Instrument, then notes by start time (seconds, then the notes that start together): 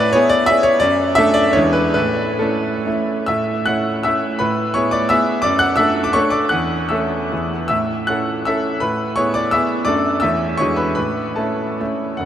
grand piano
Already playing: A2 B4 D5
0.13 B3 E4 G#4 C#5
0.29 D5
0.46 B3 E4 G#4 E5
0.63 C#5
0.80 F#2 D5
1.15 A3 D4 A4 E5
1.34 D5
1.53 E2 G#3 D4 C#5
1.57 E4
1.73 B4
1.94 A2 B4
2.39 A3 C#4 E4 A4
2.86 A3 C#4 E4
3.26 A2 E5 E6
3.66 A3 C#4 E4 F#5 F#6
4.03 A3 C#4 E4 E5 E6
4.39 A2 B4 B5
4.74 B3 E4 G#4 C#5 C#6
4.91 D5 D6
5.09 B3 E4 G#4 E5 E6
5.42 F#2 D5 D6
5.59 F#5 F#6
5.76 A3 D4 A4 E5 E6
6.04 D6
6.13 A3 D4 A4 C#5 C#6
6.30 D5 D6
6.49 E2 F#5 F#6
6.89 A3 C#4 A4 E5 E6
7.32 E2 B3 E4 G#4
7.68 A2 E5 E6
8.07 C#4 E4 A4 F#5 F#6
8.45 C#4 E4 A4 E5 E6
8.80 A2 B4 B5
9.16 B3 E4 G#4 C#5 C#6
9.34 D5 D6
9.51 B3 E4 G#4 E5 E6
9.85 F#2 A3 D4 A4 D5 D6
10.20 E2 A3 C#4 E5 E6
10.24 A4
10.58 E2 G#3 D4 F#4 C#5 C#6
10.76 B4 B5
10.95 A2 B4 B5
11.36 A3 C#4 E4 A4 A5
11.80 A3 C#4 E4
12.17 F#1 F#2 F#5